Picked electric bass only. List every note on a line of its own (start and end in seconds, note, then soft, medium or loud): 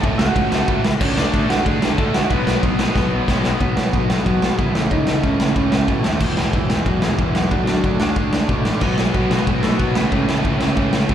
0.03 0.14 C#2 medium
0.19 0.29 C#2 medium
0.36 0.46 C#2 medium
0.52 0.62 C#2 medium
0.68 0.78 C#2 loud
0.84 0.94 C#2 medium
1.01 1.11 D2 loud
1.17 1.27 D2 medium
1.34 1.44 D2 medium
1.49 1.59 D2 loud
1.66 1.76 D2 loud
1.81 1.92 D2 medium
1.98 2.08 D2 loud
2.15 2.25 D2 medium
2.30 2.40 B1 loud
2.47 2.57 B1 medium
2.63 2.73 B1 loud
2.79 2.89 B1 medium
2.95 3.06 B1 loud
3.12 3.22 B1 medium
3.28 3.38 B1 loud
3.44 3.55 B1 medium
3.60 3.73 B1 medium
3.76 3.89 B1 medium
3.93 4.06 B1 medium
4.09 4.22 B1 medium
4.26 4.39 B1 medium
4.42 4.55 B1 medium
4.59 4.71 C2 medium
4.75 4.88 C#2 medium
4.91 5.04 C#2 medium
5.08 5.20 C#2 medium
5.24 5.36 C#2 medium
5.41 5.54 C#2 medium
5.56 5.69 C#2 medium
5.73 5.86 C#2 medium
5.88 6.01 B2 medium
6.06 6.18 D#2 medium
6.21 6.34 E1 medium
6.37 6.50 E1 medium
6.53 6.66 E1 medium
6.70 6.83 E1 medium
6.86 6.99 E1 medium
7.03 7.16 E1 medium
7.18 7.52 E1 medium
7.52 7.64 D2 loud
7.68 7.81 D2 medium
7.84 7.97 D2 medium
8.00 8.13 D2 medium
8.16 8.29 D2 medium
8.33 8.46 D2 medium
8.49 8.62 B2 medium
8.65 8.81 A1 medium
8.81 8.94 B1 medium
8.98 9.11 B1 medium
9.14 9.27 B1 medium
9.30 9.43 B1 medium
9.47 9.60 B1 medium
9.63 9.76 B1 medium
9.79 9.92 B1 medium
9.96 10.08 C#2 medium
10.12 10.25 C#2 medium
10.28 10.41 C#2 medium
10.44 10.57 C#2 medium
10.61 10.73 C#2 medium
10.77 10.90 C#2 medium
10.93 11.06 C#2 medium
11.09 11.14 B2 medium